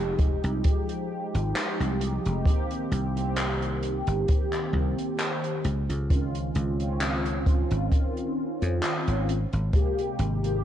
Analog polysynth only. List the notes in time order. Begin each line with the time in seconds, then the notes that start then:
Already playing: F3 G#3 D#4 G4
2.45 D#3 A#3 C4 G4
3.15 D#3 A#3 C4 G4
6.09 D#3 C4 C#4 F4
6.79 D#3 C4 C#4 F4
9.73 C3 G#3 A#3 G4
10.42 C3 G#3 A#3 G4